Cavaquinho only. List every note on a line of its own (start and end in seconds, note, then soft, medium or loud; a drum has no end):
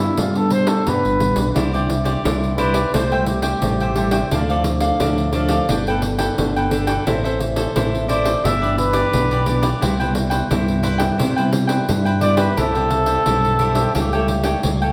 1.55 1.71 E4 medium
1.55 1.72 G4 medium
1.55 1.72 C5 medium
1.55 1.72 D5 medium
1.73 1.88 G4 medium
1.73 1.88 C5 medium
1.73 1.89 D5 medium
1.89 muted cavaquinho stroke soft
2.04 2.23 G4 medium
2.04 2.22 C5 medium
2.04 2.22 D5 medium
2.24 2.57 E4 soft
2.24 2.57 G4 medium
2.24 2.58 C5 medium
2.24 2.58 D5 medium
2.58 2.75 E4 medium
2.58 2.75 G4 medium
2.58 2.74 C5 medium
2.58 2.73 D5 medium
2.74 2.92 G4 medium
2.74 2.92 C5 medium
2.74 2.91 D5 medium
2.94 3.10 A4 medium
2.94 3.10 C5 medium
2.94 3.10 E5 medium
2.94 3.10 G5 medium
3.12 3.27 C5 medium
3.12 3.27 E5 medium
3.12 3.27 G5 medium
3.28 muted cavaquinho stroke soft
3.43 3.78 C5 medium
3.43 3.78 E5 medium
3.43 3.77 G5 medium
3.81 3.96 C5 medium
3.81 3.96 E5 medium
3.81 3.96 G5 medium
3.96 4.12 A4 soft
3.96 4.13 C5 soft
3.96 4.12 E5 medium
3.96 4.11 G5 medium
4.12 4.30 C5 medium
4.12 4.30 E5 medium
4.12 4.29 G5 medium
4.32 4.48 D4 medium
4.32 4.48 A4 medium
4.32 4.48 D5 medium
4.32 4.48 F5 medium
4.49 4.64 A4 medium
4.49 4.64 D5 medium
4.49 4.65 F5 medium
4.65 muted cavaquinho stroke soft
4.80 4.99 A4 medium
4.80 4.98 D5 medium
4.80 4.98 F5 medium
5.00 5.32 D4 medium
5.00 5.33 A4 medium
5.00 5.34 D5 medium
5.00 5.34 F5 medium
5.33 5.50 D4 medium
5.33 5.50 A4 medium
5.33 5.49 D5 medium
5.33 5.48 F5 medium
5.49 5.67 A4 medium
5.49 5.67 D5 medium
5.49 5.66 F5 medium
5.69 5.85 D4 soft
5.69 5.86 A4 medium
5.69 5.86 B4 medium
5.69 5.86 G5 medium
5.88 6.02 A4 medium
5.88 6.02 B4 medium
5.88 6.02 G5 medium
6.03 muted cavaquinho stroke soft
6.18 6.54 A4 medium
6.18 6.53 B4 medium
6.18 6.53 G5 medium
6.56 6.70 A4 soft
6.56 6.71 B4 medium
6.56 6.72 G5 medium
6.71 6.88 D4 medium
6.71 6.88 A4 medium
6.71 6.87 B4 medium
6.71 6.86 G5 medium
6.87 7.05 A4 medium
6.87 7.05 B4 medium
6.87 7.04 G5 medium
7.06 7.22 E4 medium
7.06 7.23 A4 medium
7.06 7.23 C5 medium
7.06 7.23 E5 medium
7.24 7.39 A4 medium
7.24 7.39 C5 medium
7.24 7.39 E5 medium
7.40 muted cavaquinho stroke soft
7.56 7.74 A4 medium
7.56 7.74 C5 medium
7.56 7.73 E5 medium
7.76 8.07 E4 medium
7.76 8.07 A4 medium
7.76 8.08 C5 medium
7.76 8.09 E5 medium
8.08 8.25 E4 medium
8.08 8.25 A4 medium
8.08 8.24 C5 medium
8.08 8.23 E5 medium
8.25 8.43 A4 medium
8.25 8.42 C5 medium
8.25 8.42 E5 medium
8.44 8.60 E4 soft
8.44 8.61 G4 medium
8.44 8.61 B4 medium
8.44 8.60 D5 medium
8.62 8.76 G4 medium
8.62 8.76 B4 medium
8.62 8.77 D5 medium
8.77 muted cavaquinho stroke soft
8.93 9.29 G4 medium
8.93 9.28 B4 medium
8.93 9.28 D5 medium
9.31 9.45 G4 medium
9.31 9.45 B4 medium
9.31 9.46 D5 medium
9.45 9.62 E4 medium
9.45 9.62 G4 medium
9.45 9.61 B4 medium
9.45 9.60 D5 medium
9.62 9.80 G4 medium
9.62 9.80 B4 medium
9.62 9.79 D5 medium
9.81 9.97 E4 medium
9.81 9.98 B4 medium
9.81 9.98 C5 medium
9.81 9.98 G5 medium
10.00 10.14 B4 medium
10.00 10.13 C5 medium
10.00 10.14 G5 medium
10.14 muted cavaquinho stroke soft
10.30 10.48 B4 medium
10.30 10.49 C5 medium
10.30 10.48 G5 medium
10.50 10.81 E4 medium
10.50 10.83 B4 medium
10.50 10.82 C5 medium
10.50 10.83 G5 medium
10.83 11.00 E4 medium
10.83 10.98 B4 medium
10.83 10.99 C5 medium
10.83 10.97 G5 medium
10.98 11.17 B4 medium
10.98 11.17 C5 medium
10.98 11.16 G5 medium
11.18 11.35 E4 medium
11.18 11.35 B4 medium
11.18 11.35 C5 medium
11.18 11.35 G5 medium
11.36 11.51 B4 medium
11.36 11.51 C5 medium
11.36 11.51 G5 medium
11.52 muted cavaquinho stroke soft
11.67 12.03 B4 medium
11.67 12.03 C5 medium
11.67 12.02 G5 medium
12.05 12.21 B4 medium
12.05 12.20 C5 soft
12.05 12.21 G5 medium
12.21 12.38 E4 soft
12.21 12.37 B4 medium
12.21 12.37 C5 medium
12.21 12.36 G5 medium
12.37 12.55 B4 medium
12.37 12.55 C5 medium
12.37 12.54 G5 medium
12.56 12.73 E4 medium
12.56 12.73 G4 medium
12.56 12.73 C5 medium
12.56 12.74 E5 medium
12.75 12.89 G4 medium
12.75 12.90 C5 medium
12.75 12.90 E5 medium
12.90 muted cavaquinho stroke soft
13.06 13.24 G4 medium
13.06 13.24 C5 medium
13.06 13.23 E5 medium
13.26 13.58 E4 soft
13.26 13.59 G4 soft
13.26 13.59 C5 soft
13.26 13.60 E5 medium
13.59 13.76 E4 medium
13.59 13.75 G4 medium
13.59 13.74 C5 medium
13.59 13.73 E5 medium
13.75 13.93 G4 medium
13.75 13.92 C5 medium
13.75 13.92 E5 medium
13.95 14.11 G4 soft
13.95 14.11 A4 soft
13.95 14.11 C#5 medium
13.95 14.12 G5 medium
14.13 14.27 A4 medium
14.13 14.28 C#5 medium
14.13 14.28 G5 medium
14.28 muted cavaquinho stroke soft
14.44 14.79 A4 medium
14.44 14.79 C#5 medium
14.44 14.78 G5 medium
14.82 14.93 A4 medium
14.82 14.93 C#5 medium
14.82 14.93 G5 medium